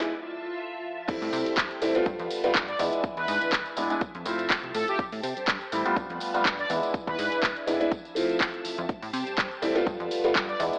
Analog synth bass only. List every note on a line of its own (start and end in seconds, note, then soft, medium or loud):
1.09 1.19 A2 soft
1.22 1.31 A2 loud
1.33 1.43 C3 loud
1.46 1.55 G2 soft
1.57 1.68 G2 medium
1.82 1.92 A1 medium
2.06 2.17 G2 medium
2.20 2.28 F2 medium
2.44 2.53 G2 soft
2.55 2.75 G2 loud
2.79 2.90 E2 loud
3.04 3.15 E2 soft
3.17 3.26 E2 loud
3.28 3.39 G#2 loud
3.42 3.51 D2 soft
3.53 3.63 D2 medium
3.77 3.88 E1 medium
4.15 4.25 F2 medium
4.26 4.59 F1 loud
4.63 4.72 C2 medium
4.75 4.85 A2 medium
4.99 5.10 A2 soft
5.12 5.21 A2 loud
5.23 5.34 C3 loud
5.37 5.46 G2 soft
5.48 5.58 G2 medium
5.72 5.83 A1 medium
5.96 6.07 G2 medium
6.10 6.19 F2 medium
6.35 6.43 G2 soft
6.45 6.65 G2 loud
6.70 6.80 E2 loud
6.94 7.05 E2 soft
7.07 7.16 E2 loud
7.19 7.29 G#2 loud
7.32 7.41 D2 soft
7.43 7.53 D2 medium
7.68 7.78 E1 medium
8.65 8.76 F2 soft
8.78 8.87 F2 medium
8.89 9.00 A2 soft
9.02 9.11 A2 loud
9.13 9.24 C3 loud
9.27 9.36 G2 soft
9.38 9.49 G2 medium
9.62 9.73 A1 medium
9.87 9.97 G2 medium
10.00 10.09 F2 medium
10.24 10.33 G2 soft
10.35 10.55 G2 loud
10.60 10.70 E2 loud